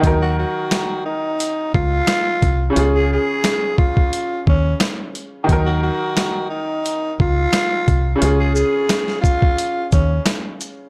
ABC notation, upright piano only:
X:1
M:4/4
L:1/8
Q:"Swing 16ths" 1/4=88
K:Ebm
V:1 name="Upright piano"
[E,G,EB]8 | [D,DFA]8 | [E,G,EB]8 | [D,DFA]8 |]